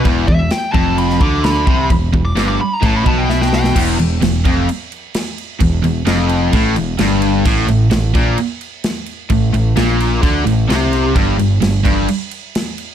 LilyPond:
<<
  \new Staff \with { instrumentName = "Lead electric guitar" } { \time 4/4 \key e \phrygian \tempo 4 = 130 r8 e''8 g''8 a''8 b''8 d'''8 b''4 | r8. d'''16 r16 d'''16 b''16 ais''16 a''16 b''16 a''16 g''16 e''16 g''16 g''8 | r1 | r1 |
r1 | r1 | r1 | }
  \new Staff \with { instrumentName = "Distorted electric guitar" } { \clef bass \time 4/4 \key e \phrygian e,8 e,8 r8 f,4 d4 c8 | e,8 e,8 g,8 r8 a,8 b,4. | e,8 e,8 e,8 f,8 r2 | e,8 e,8 f,4 a,8 e,8 g,4 |
a,8 a,8 a,8 ais,8 r2 | a,8 a,8 ais,4 d8 a,8 bis,4 | g,8 g,8 g,8 g,8 r2 | }
  \new Staff \with { instrumentName = "Distorted electric guitar" } { \clef bass \time 4/4 \key e \phrygian e,8 e,8 r8 f,4 d4 c8 | e,8 e,8 g,8 r8 a,8 b,4. | e,8 e,8 e,8 f,8 r2 | e,8 e,8 f,4 a,8 e,8 g,4 |
a,8 a,8 a,8 ais,8 r2 | a,8 a,8 ais,4 d8 a,8 bis,4 | g,8 g,8 g,8 g,8 r2 | }
  \new Staff \with { instrumentName = "Overdriven electric guitar" } { \clef bass \time 4/4 \key e \phrygian e,8 e,8 r8 f,4 d4 c8 | e,8 e,8 g,8 r8 a,8 b,4. | e,8 e,8 e,8 f,8 r2 | e,8 e,8 f,4 a,8 e,8 g,4 |
a,8 a,8 a,8 ais,8 r2 | a,8 a,8 ais,4 d8 a,8 bis,4 | g,8 g,8 g,8 g,8 r2 | }
  \new Staff \with { instrumentName = "Picked electric bass" } { \clef bass \time 4/4 \key e \phrygian e,,8 e,,8 r8 f,,4 d,4 c,8 | e,,8 e,,8 g,,8 r8 a,,8 b,,4. | e,,8 e,,8 e,,8 f,,8 r2 | e,,8 e,,8 f,,4 a,,8 e,,8 g,,4 |
a,,8 a,,8 a,,8 ais,,8 r2 | a,,8 a,,8 ais,,4 d,8 a,,8 bis,,4 | g,,8 g,,8 g,,8 g,,8 r2 | }
  \new DrumStaff \with { instrumentName = "Drums" } \drummode { \time 4/4 <cymc bd>8 bd8 <cymc sn>8 bd8 cymc16 sn16 bd8 <cymc sn>8 bd8 | <cymc bd>8 bd8 <cymc sn>4 <cymc bd>8 bd8 sn16 sn16 sn16 sn16 | <cymc bd>8 cymc8 <cymc sn>8 <cymc bd>8 cymc8 cymc8 <cymc sn>8 cymc8 | <cymc bd>8 cymc8 <cymc sn>8 cymc8 <cymc bd>8 cymc8 <cymc sn>8 cymc8 |
<cymc bd>8 cymc8 <cymc sn>8 <cymc bd>8 cymc8 cymc8 <cymc sn>8 cymc8 | <cymc bd>8 cymc8 <cymc sn>8 cymc8 <cymc bd>8 cymc8 <cymc sn>8 cymc8 | <cymc bd>8 cymc8 <cymc sn>8 <cymc bd>8 cymc8 cymc8 <cymc sn>8 cymc8 | }
>>